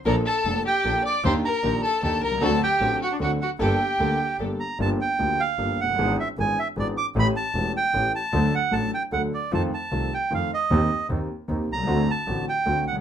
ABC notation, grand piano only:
X:1
M:3/4
L:1/16
Q:1/4=152
K:Gm
V:1 name="Grand piano" clef=bass
[B,,,B,,F,B,DA]2 z2 [F,,,F,,F,B,DA]2 z2 [B,,,B,,F,B,DA]2 z2 | [E,,E,B,DG]2 z2 [B,,,B,,E,B,DG]2 z2 [E,,E,B,DG]2 z/2 =B,,,/2 C,,/2 ^C,,/2 | [D,,D,^F,CDA]2 z2 [A,,,A,,F,CDA]2 z2 [D,,D,F,CDA]2 z2 | [G,,,G,,G,B,DA]2 z2 [D,,D,G,B,DA]2 z2 [G,,,G,,G,B,DA]2 z2 |
[G,,,G,,F,B,DG]2 z2 [D,,D,F,B,DG]2 z2 [G,,,G,,F,B,DG]2 z/2 F,,,/2 ^F,,,/2 G,,,/2 | [^G,,,^G,,=E,=B,D^G]2 z2 [G,,,G,,E,B,DG]2 z2 [G,,,G,,E,B,DG]2 z2 | [A,,,A,,=E,A,^CG]2 z2 [=E,,,=E,,E,A,CG]2 z2 [A,,,A,,E,A,CG]2 z2 | [D,,D,^F,A,DA]2 z2 [A,,,A,,F,A,DA]2 z2 [D,,D,F,A,DA]2 z2 |
[F,,E,F,A,CF]2 z2 [C,,C,E,A,CF]2 z2 [F,,E,F,A,CF]2 z2 | [E,,E,B,CG]2 z2 [E,,E,B,CG]2 z2 [E,,E,B,CG]2 z/2 =B,,,/2 C,,/2 ^C,,/2 | [D,,D,A,C^F]2 z2 [A,,,A,,D,A,CF]2 z2 [D,,D,A,CF]2 z/2 C,,/2 ^C,,/2 z/2 |]